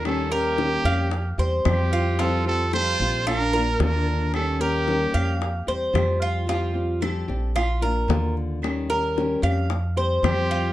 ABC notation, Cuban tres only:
X:1
M:4/4
L:1/8
Q:1/4=112
K:F
V:1 name="Cuban tres"
z B2 f2 c2 F | F2 A2 F B2 z | z B2 f2 c2 F | F2 A2 F B2 z |
z B2 f2 c2 F |]